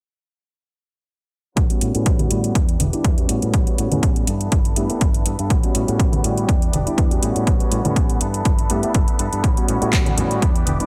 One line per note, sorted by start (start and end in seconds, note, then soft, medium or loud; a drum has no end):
1.56 1.67 A1 medium
1.56 1.79 G3 medium
1.56 4.25 G3 medium
1.56 1.80 B3 medium
1.56 1.81 C#4 medium
1.56 1.82 F#4 medium
1.56 2.54 C#5 medium
1.56 2.54 F#5 medium
1.56 2.54 B5 medium
1.56 kick loud
1.56 closed hi-hat medium
1.70 1.91 G3 medium
1.70 1.92 B3 medium
1.70 1.92 C#4 medium
1.70 1.92 F#4 medium
1.70 closed hi-hat soft
1.81 1.92 A2 medium
1.81 1.94 G3 medium
1.81 1.95 B3 medium
1.81 1.94 C#4 medium
1.81 1.93 F#4 medium
1.81 closed hi-hat medium
1.94 2.04 A2 loud
1.94 2.54 G3 medium
1.94 2.54 B3 medium
1.94 2.05 B3 soft
1.94 2.54 C#4 medium
1.94 2.06 C#4 medium
1.94 2.06 F#4 medium
1.94 2.54 F#4 medium
1.94 closed hi-hat soft
2.05 2.26 A1 medium
2.05 2.28 G3 medium
2.05 2.30 B3 medium
2.05 kick loud
2.05 closed hi-hat medium
2.19 closed hi-hat soft
2.19 high conga medium
2.30 2.50 A2 medium
2.30 2.55 G3 medium
2.30 2.53 B3 medium
2.30 2.56 C#4 medium
2.30 2.56 F#4 medium
2.30 closed hi-hat medium
2.30 shaker medium
2.44 closed hi-hat soft
2.54 2.75 E2 medium
2.54 2.68 B3 medium
2.54 2.66 G4 medium
2.54 3.29 E5 medium
2.54 3.28 D6 medium
2.54 kick loud
2.54 closed hi-hat medium
2.68 2.79 D4 soft
2.68 2.79 G4 medium
2.68 closed hi-hat soft
2.79 2.90 E1 medium
2.79 2.93 B3 medium
2.79 2.94 D4 medium
2.79 2.91 G4 medium
2.79 closed hi-hat medium
2.79 high conga medium
2.79 shaker medium
2.92 3.14 G3 medium
2.92 3.15 B3 medium
2.92 3.15 D4 medium
2.92 3.04 D4 soft
2.92 3.15 E4 medium
2.92 3.04 G4 medium
2.92 muted fingered electric bass stroke soft
2.92 closed hi-hat soft
2.92 shaker soft
3.04 3.24 E2 loud
3.04 3.28 B3 medium
3.04 3.30 G4 medium
3.04 kick loud
3.04 closed hi-hat medium
3.18 3.64 G3 medium
3.18 3.64 B3 medium
3.18 3.64 C#4 medium
3.18 3.64 F#4 medium
3.18 closed hi-hat soft
3.28 3.40 A2 medium
3.28 3.42 G3 medium
3.28 3.43 B3 medium
3.28 3.42 C#4 medium
3.28 3.40 F#4 medium
3.28 4.27 C#5 medium
3.28 4.27 F#5 medium
3.28 6.46 B5 medium
3.28 closed hi-hat medium
3.41 3.51 A2 medium
3.41 3.53 B3 soft
3.41 3.53 C#4 medium
3.41 3.53 F#4 medium
3.41 closed hi-hat soft
3.53 3.64 A1 medium
3.53 3.76 G3 medium
3.53 3.77 B3 medium
3.53 3.78 C#4 medium
3.53 3.79 F#4 medium
3.53 kick loud
3.53 closed hi-hat medium
3.67 3.88 G3 medium
3.67 3.88 B3 medium
3.67 3.88 C#4 medium
3.67 3.89 F#4 medium
3.67 closed hi-hat soft
3.77 3.89 A2 medium
3.77 3.91 G3 medium
3.77 3.92 B3 medium
3.77 3.91 C#4 medium
3.77 3.89 F#4 medium
3.77 closed hi-hat medium
3.90 4.00 A2 medium
3.90 4.26 G3 medium
3.90 4.26 B3 medium
3.90 4.02 B3 soft
3.90 4.26 C#4 medium
3.90 4.02 C#4 medium
3.90 4.02 F#4 medium
3.90 closed hi-hat soft
3.90 high conga medium
3.90 shaker soft
4.02 4.23 A1 medium
4.02 4.26 G3 medium
4.02 4.26 B3 medium
4.02 4.28 C#4 medium
4.02 kick loud
4.02 closed hi-hat medium
4.16 closed hi-hat soft
4.26 4.47 G2 medium
4.26 4.50 E3 medium
4.26 4.51 B3 medium
4.26 4.52 D4 medium
4.26 5.49 A4 medium
4.26 4.53 A4 medium
4.26 5.49 E5 medium
4.26 closed hi-hat medium
4.26 shaker medium
4.41 closed hi-hat soft
4.51 4.72 G1 medium
4.51 4.65 E3 medium
4.51 kick loud
4.51 closed hi-hat medium
4.64 4.76 B3 soft
4.64 4.77 D4 medium
4.64 4.76 A4 medium
4.64 closed hi-hat soft
4.76 4.87 G2 medium
4.76 4.89 E3 medium
4.76 4.87 A3 medium
4.76 4.87 B3 medium
4.76 4.90 B3 medium
4.76 4.89 D4 medium
4.76 4.87 E4 medium
4.76 4.87 G4 medium
4.76 4.88 A4 medium
4.76 closed hi-hat medium
4.89 5.01 A3 medium
4.89 5.01 B3 medium
4.89 5.00 B3 soft
4.89 5.01 D4 medium
4.89 5.02 E4 medium
4.89 5.02 G4 medium
4.89 5.01 A4 medium
4.89 muted fingered electric bass stroke soft
4.89 closed hi-hat soft
5.01 5.21 G1 medium
5.01 5.25 B3 medium
5.01 kick loud
5.01 closed hi-hat medium
5.14 closed hi-hat soft
5.25 5.36 G2 medium
5.25 5.39 E3 medium
5.25 5.39 B3 medium
5.25 5.39 D4 medium
5.25 5.37 A4 medium
5.25 closed hi-hat medium
5.38 5.48 G2 medium
5.38 5.49 B3 soft
5.38 5.51 D4 medium
5.38 5.50 A4 medium
5.38 closed hi-hat soft
5.50 5.61 A1 medium
5.50 5.73 G3 medium
5.50 8.18 G3 medium
5.50 5.74 B3 medium
5.50 5.75 C#4 medium
5.50 5.76 F#4 medium
5.50 6.48 C#5 medium
5.50 6.48 F#5 medium
5.50 kick loud
5.50 closed hi-hat medium
5.63 5.85 G3 medium
5.63 5.85 B3 medium
5.63 5.85 C#4 medium
5.63 5.85 F#4 medium
5.63 closed hi-hat soft
5.74 5.85 A2 medium
5.74 5.88 G3 medium
5.74 5.88 B3 medium
5.74 5.88 C#4 medium
5.74 5.86 F#4 medium
5.74 closed hi-hat medium
5.87 5.97 A2 loud
5.87 6.47 G3 medium
5.87 6.47 B3 medium
5.87 5.98 B3 soft
5.87 6.47 C#4 medium
5.87 5.99 C#4 medium
5.87 5.99 F#4 medium
5.87 6.48 F#4 medium
5.87 closed hi-hat soft
5.99 6.19 A1 medium
5.99 6.22 G3 medium
5.99 6.23 B3 medium
5.99 6.24 C#4 medium
5.99 6.25 F#4 medium
5.99 kick loud
5.99 closed hi-hat medium
6.12 closed hi-hat soft
6.12 high conga medium
6.23 6.44 A2 medium
6.23 6.48 G3 medium
6.23 6.46 B3 medium
6.23 6.49 C#4 medium
6.23 6.50 F#4 medium
6.23 closed hi-hat medium
6.23 shaker medium
6.37 closed hi-hat soft
6.37 shaker soft
6.48 6.61 B3 medium
6.48 6.62 D4 medium
6.48 7.22 E5 medium
6.48 7.22 D6 medium
6.48 kick loud
6.48 closed hi-hat medium
6.61 6.73 D4 medium
6.61 6.73 G4 medium
6.61 closed hi-hat soft
6.72 6.84 E1 medium
6.72 6.86 B3 medium
6.72 6.87 D4 medium
6.72 6.84 G4 medium
6.72 closed hi-hat medium
6.72 high conga medium
6.72 shaker medium
6.86 7.08 G3 medium
6.86 7.08 B3 medium
6.86 7.08 D4 medium
6.86 6.97 D4 soft
6.86 7.08 E4 medium
6.86 6.97 G4 medium
6.86 muted fingered electric bass stroke soft
6.86 closed hi-hat soft
6.97 7.18 E2 loud
6.97 7.21 B3 medium
6.97 7.23 D4 medium
6.97 kick loud
6.97 closed hi-hat medium
7.11 7.57 G3 medium
7.11 7.57 B3 medium
7.11 7.57 C#4 medium
7.11 7.57 F#4 medium
7.11 closed hi-hat soft
7.22 7.33 A2 medium
7.22 7.45 G3 medium
7.22 7.46 B3 medium
7.22 7.47 C#4 medium
7.22 7.47 F#4 medium
7.22 8.20 C#5 medium
7.22 8.20 F#5 medium
7.22 10.39 B5 medium
7.22 closed hi-hat medium
7.36 7.45 A2 medium
7.36 closed hi-hat soft
7.47 7.58 A1 medium
7.47 7.70 G3 medium
7.47 7.71 B3 medium
7.47 7.72 C#4 medium
7.47 kick loud
7.47 closed hi-hat medium
7.60 7.82 G3 medium
7.60 7.82 B3 medium
7.60 7.82 C#4 medium
7.60 7.82 F#4 medium
7.60 closed hi-hat soft
7.71 7.82 A2 medium
7.71 7.85 G3 medium
7.71 7.85 B3 medium
7.71 7.85 C#4 medium
7.71 7.83 F#4 medium
7.71 closed hi-hat medium
7.84 7.94 A2 medium
7.84 8.19 G3 medium
7.84 8.19 B3 medium
7.84 7.95 B3 soft
7.84 8.20 C#4 medium
7.84 7.96 C#4 medium
7.84 7.96 F#4 medium
7.84 closed hi-hat soft
7.84 high conga medium
7.84 shaker soft
7.96 8.16 A1 medium
7.96 8.19 G3 medium
7.96 8.20 B3 medium
7.96 8.21 C#4 medium
7.96 8.22 F#4 medium
7.96 kick loud
7.96 closed hi-hat medium
8.10 closed hi-hat soft
8.20 8.41 G2 medium
8.20 8.43 E3 medium
8.20 8.44 B3 medium
8.20 8.45 D4 medium
8.20 9.43 A4 medium
8.20 8.46 A4 medium
8.20 9.43 E5 medium
8.20 closed hi-hat medium
8.20 shaker medium
8.34 closed hi-hat soft
8.44 8.65 G1 medium
8.44 8.58 E3 medium
8.44 8.59 B3 medium
8.44 8.58 D4 medium
8.44 kick loud
8.44 closed hi-hat medium
8.58 8.69 B3 soft
8.58 8.70 D4 medium
8.58 8.70 A4 medium
8.58 closed hi-hat soft
8.69 8.81 G2 medium
8.69 8.83 E3 medium
8.69 8.80 A3 medium
8.69 8.80 B3 medium
8.69 8.83 B3 medium
8.69 8.83 D4 medium
8.69 8.80 E4 medium
8.69 8.81 G4 medium
8.69 8.81 A4 medium
8.69 closed hi-hat medium
8.82 8.95 A3 medium
8.82 8.95 B3 medium
8.82 8.94 B3 soft
8.82 8.94 D4 medium
8.82 8.95 E4 medium
8.82 8.96 G4 medium
8.82 8.94 A4 medium
8.82 muted fingered electric bass stroke soft
8.82 closed hi-hat soft
8.82 shaker soft
8.94 9.05 G1 medium
8.94 9.17 E3 medium
8.94 9.18 B3 medium
8.94 9.20 A4 medium
8.94 kick loud
8.94 closed hi-hat medium
9.08 closed hi-hat soft
9.18 9.30 G2 medium
9.18 9.42 E3 medium
9.18 9.43 B3 medium
9.18 9.44 D4 medium
9.18 9.45 A4 medium
9.18 closed hi-hat medium
9.33 9.41 G2 medium
9.33 closed hi-hat soft
9.43 9.54 A1 medium
9.43 9.66 G3 medium
9.43 10.86 G3 medium
9.43 9.67 B3 medium
9.43 9.68 C#4 medium
9.43 9.69 F#4 medium
9.43 10.41 C#5 medium
9.43 10.41 F#5 medium
9.43 kick loud
9.43 closed hi-hat medium
9.57 9.78 G3 medium
9.57 9.79 B3 medium
9.57 9.79 C#4 medium
9.57 9.79 F#4 medium
9.57 closed hi-hat soft
9.67 9.79 A2 medium
9.67 9.81 G3 medium
9.67 9.82 B3 medium
9.67 9.81 C#4 medium
9.67 9.79 F#4 medium
9.67 closed hi-hat medium
9.81 9.91 A2 loud
9.81 10.41 G3 medium
9.81 10.41 B3 medium
9.81 9.92 B3 soft
9.81 10.41 C#4 medium
9.81 9.93 C#4 medium
9.81 9.92 F#4 medium
9.81 10.41 F#4 medium
9.81 closed hi-hat soft
9.92 10.13 A1 medium
9.92 10.15 G3 medium
9.92 10.17 B3 medium
9.92 10.18 C#4 medium
9.92 10.18 F#4 loud
9.92 kick loud
9.92 clap loud
9.92 closed hi-hat medium
10.06 closed hi-hat soft
10.06 high conga medium
10.17 10.37 A2 medium
10.17 10.42 G3 medium
10.17 10.40 B3 medium
10.17 10.43 C#4 medium
10.17 10.43 F#4 medium
10.17 closed hi-hat medium
10.17 low conga medium
10.17 shaker medium
10.31 closed hi-hat soft
10.31 shaker soft
10.41 10.62 E2 medium
10.41 10.55 B3 medium
10.41 10.53 G4 medium
10.41 10.86 E5 medium
10.41 10.86 D6 medium
10.41 kick loud
10.41 closed hi-hat medium
10.54 10.66 D4 medium
10.54 10.66 G4 medium
10.54 closed hi-hat soft
10.66 10.77 E1 medium
10.66 10.80 B3 medium
10.66 10.80 D4 medium
10.66 10.78 G4 medium
10.66 closed hi-hat medium
10.66 high conga medium
10.66 shaker medium
10.79 10.86 G3 medium
10.79 10.86 B3 medium
10.79 10.86 D4 medium
10.79 10.86 E4 medium
10.79 10.86 G4 medium
10.79 muted fingered electric bass stroke soft
10.79 closed hi-hat soft